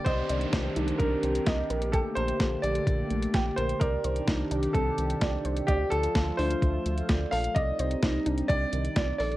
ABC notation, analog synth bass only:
X:1
M:4/4
L:1/8
Q:1/4=128
K:Cdor
V:1 name="Analog synth bass" clef=bass
C,, C,, C,, C,, C,, C,, C,, B,,,- | B,,, B,,, B,,, B,,, B,,, B,,, B,,, B,,, | C,, C,, C,, C,, C,, C,, C,, C,, | D,, D,, D,, D,, D,, D,, D,, B,,, |
C,, C,, C,, C,, C,, C,, C,, B,,, |]